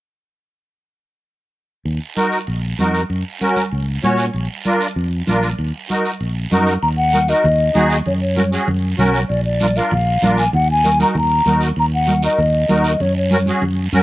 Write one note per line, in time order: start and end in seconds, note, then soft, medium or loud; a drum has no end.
1.85 1.98 D#2 medium
1.85 long guiro medium
2.16 2.38 D#4 medium
2.16 2.39 F#4 medium
2.16 2.39 A#4 medium
2.16 high conga medium
2.16 short guiro medium
2.32 short guiro medium
2.47 2.73 A#1 medium
2.47 long guiro medium
2.79 3.04 F2 medium
2.79 3.01 D#4 medium
2.79 3.01 F#4 medium
2.79 3.01 A#4 medium
2.79 high conga medium
2.79 short guiro medium
2.95 short guiro medium
3.10 3.22 F#2 medium
3.10 long guiro medium
3.41 3.63 C#4 medium
3.41 3.63 F#4 medium
3.41 3.63 A#4 medium
3.41 high conga medium
3.41 short guiro medium
3.56 high conga medium
3.56 short guiro medium
3.72 3.97 C#2 medium
3.72 long guiro medium
4.02 4.28 A#2 medium
4.02 4.25 C#4 medium
4.02 4.25 F#4 medium
4.02 4.25 C#5 medium
4.02 high conga medium
4.02 short guiro medium
4.18 short guiro medium
4.33 4.47 A#1 medium
4.33 long guiro medium
4.65 4.87 D4 medium
4.65 4.87 F4 medium
4.65 4.87 A#4 medium
4.65 high conga medium
4.65 short guiro medium
4.81 short guiro medium
4.96 5.21 F2 medium
4.96 long guiro medium
5.27 5.52 A#1 medium
5.27 5.49 D4 medium
5.27 5.49 F4 medium
5.27 5.49 A#4 medium
5.27 high conga medium
5.27 short guiro medium
5.43 short guiro medium
5.58 5.71 D#2 medium
5.58 long guiro medium
5.89 6.11 D#4 medium
5.89 6.11 F#4 medium
5.89 6.11 A#4 medium
5.89 high conga medium
5.89 short guiro medium
6.05 short guiro medium
6.21 6.45 A#1 medium
6.21 long guiro medium
6.52 6.76 F#2 medium
6.52 6.73 D#4 medium
6.52 6.73 F#4 medium
6.52 6.74 A#4 medium
6.52 high conga medium
6.52 short guiro medium
6.67 short guiro medium
6.83 7.32 D#2 medium
6.83 6.89 A#5 loud
6.83 long guiro medium
6.97 7.31 F#5 medium
7.13 7.19 D#4 medium
7.13 7.19 F#4 medium
7.13 7.19 A#4 medium
7.13 high conga medium
7.13 short guiro medium
7.28 7.45 D#4 medium
7.28 7.45 F#4 medium
7.28 7.45 A#4 medium
7.28 7.91 D#5 medium
7.28 short guiro medium
7.44 7.69 D#2 medium
7.44 low conga medium
7.44 long guiro medium
7.74 8.00 D#2 medium
7.74 7.96 D#4 medium
7.74 7.96 F#4 medium
7.74 7.96 G#4 medium
7.74 high conga medium
7.74 short guiro medium
7.90 7.97 D#5 medium
7.90 short guiro medium
8.06 8.56 F#2 medium
8.06 8.13 C#5 medium
8.06 low conga medium
8.06 long guiro medium
8.21 8.50 C#5 medium
8.36 8.42 C#4 medium
8.36 8.42 F#4 medium
8.36 8.42 A#4 medium
8.36 high conga medium
8.36 short guiro medium
8.52 8.68 C#4 medium
8.52 8.68 F#4 medium
8.52 8.69 G#4 medium
8.52 short guiro medium
8.68 8.93 F#2 medium
8.68 low conga medium
8.68 long guiro medium
8.98 9.23 B1 loud
8.98 9.20 C#4 medium
8.98 9.20 F#4 medium
8.98 9.20 A#4 medium
8.98 high conga medium
8.98 low conga medium
8.98 short guiro medium
9.14 short guiro medium
9.29 9.79 A#1 medium
9.29 9.44 D5 medium
9.29 long guiro medium
9.45 9.78 D5 medium
9.60 9.66 D4 medium
9.60 9.66 F4 medium
9.60 9.67 A#4 medium
9.60 high conga medium
9.60 short guiro medium
9.76 9.92 D4 medium
9.76 9.93 F4 medium
9.76 9.93 A#4 medium
9.76 9.92 F5 medium
9.76 short guiro medium
9.91 10.16 A#1 medium
9.91 10.35 F5 medium
9.91 low conga medium
9.91 long guiro medium
10.22 10.47 A#1 medium
10.22 10.44 D4 medium
10.22 10.44 F4 medium
10.22 10.44 A#4 medium
10.22 high conga medium
10.22 short guiro medium
10.38 10.52 G#5 medium
10.38 short guiro medium
10.53 11.03 D#2 medium
10.53 10.68 F#5 loud
10.53 low conga medium
10.53 long guiro medium
10.71 10.99 G#5 loud
10.84 10.90 D#4 medium
10.84 10.90 F#4 medium
10.84 10.90 A#4 medium
10.84 high conga medium
10.84 short guiro medium
10.99 11.16 D#4 medium
10.99 11.16 F#4 medium
10.99 11.16 A#4 medium
10.99 11.08 A#5 medium
10.99 high conga medium
10.99 short guiro medium
11.15 11.40 D#2 medium
11.15 11.59 A#5 loud
11.15 low conga medium
11.15 long guiro medium
11.46 11.71 D#2 medium
11.46 11.68 D#4 medium
11.46 11.68 F#4 medium
11.46 11.68 A#4 medium
11.46 high conga medium
11.46 short guiro medium
11.61 short guiro medium
11.76 12.26 D#2 medium
11.76 11.85 A#5 loud
11.76 long guiro medium
11.94 12.22 F#5 medium
12.07 12.13 D#4 medium
12.07 12.13 F#4 medium
12.07 12.13 A#4 medium
12.07 high conga medium
12.07 short guiro medium
12.22 12.39 D#4 medium
12.22 12.39 F#4 medium
12.22 12.40 A#4 medium
12.22 12.82 D#5 medium
12.22 short guiro medium
12.38 12.63 D#2 medium
12.38 low conga medium
12.38 long guiro medium
12.69 12.94 D#2 medium
12.69 12.91 D#4 medium
12.69 12.91 F#4 medium
12.69 12.91 A#4 medium
12.69 high conga medium
12.69 short guiro medium
12.84 13.03 D#5 medium
12.84 short guiro medium
13.00 13.50 F#2 medium
13.00 13.17 C#5 medium
13.00 low conga medium
13.00 long guiro medium
13.17 13.45 C#5 medium
13.31 13.37 C#4 medium
13.31 13.37 F#4 medium
13.31 13.37 A#4 medium
13.31 high conga medium
13.31 short guiro medium
13.46 13.64 C#4 medium
13.46 13.64 F#4 medium
13.46 13.64 G#4 medium
13.46 high conga medium
13.46 short guiro medium
13.62 13.87 F#2 medium
13.62 low conga medium
13.62 long guiro medium
13.93 14.03 F#2 loud
13.93 14.03 C#4 medium
13.93 14.03 F#4 medium
13.93 14.03 A#4 loud
13.93 high conga medium
13.93 short guiro medium